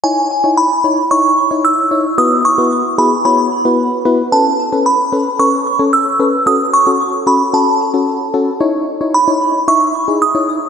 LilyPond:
<<
  \new Staff \with { instrumentName = "Synth bell" } { \time 4/4 \key cis \minor \tempo 4 = 112 gis''4 b''4 cis'''4 e'''4 | dis'''8 cis'''4 b''8 b''4. r8 | a''4 b''4 cis'''4 e'''4 | dis'''8 cis'''4 b''8 a''4. r8 |
r4 b''4 cis'''4 dis'''4 | }
  \new Staff \with { instrumentName = "FM electric piano" } { \time 4/4 \key cis \minor <dis' e' cis''>8 r16 <dis' e' cis''>8 r16 <dis' e' cis''>16 r16 <dis' e' cis''>8 r16 <dis' e' cis''>8 r16 <dis' e' cis''>16 r16 | <b e' fis' b'>8 r16 <b e' fis' b'>8 r16 <b e' fis' gis'>16 r16 <b e' fis' cis''>8 r16 <b e' fis' b'>8 r16 <b e' fis' b'>16 r16 | <cis' a' b'>8 r16 <cis' a' b'>8 r16 <cis' a' b'>16 r16 <cis' a' b'>8 r16 <cis' a' cis''>8 r16 <cis' a' b'>16 r16 | <cis' fis' a'>8 r16 <cis' fis' a'>8 r16 <cis' fis' a'>16 r16 <cis' fis' a'>8 r16 <cis' fis' a'>8 r16 <cis' fis' a'>16 r16 |
<dis' e' cis''>8 r16 <dis' e' cis''>16 r16 <dis' e' cis''>8 r16 <dis' e' e''>8 r16 <dis' e' gis'>16 r16 <dis' e' cis''>8 r16 | }
>>